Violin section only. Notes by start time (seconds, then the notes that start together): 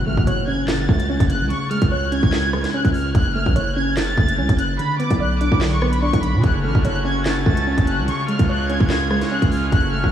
0.07 F6
0.27 F#6
0.48 G#6
0.68 A6
1.30 F#6
1.51 C#6
1.71 F6
1.92 F#6
2.13 G#6
2.74 F#6
2.94 F6
3.15 F#6
3.35 F6
3.56 F#6
3.76 G#6
3.97 A6
4.59 F#6
4.80 B5
4.99 D6
5.21 F#6
5.41 D6
5.72 C#6
5.93 B5
6.02 C#6
6.23 B5
6.43 F#6
6.64 F6
6.85 F#6
7.05 G#6
7.25 A6
7.88 F#6
8.08 C#6
8.29 F6
8.49 F#6
8.70 G#6
9.32 F#6
9.52 F6
9.73 F#6
9.93 F6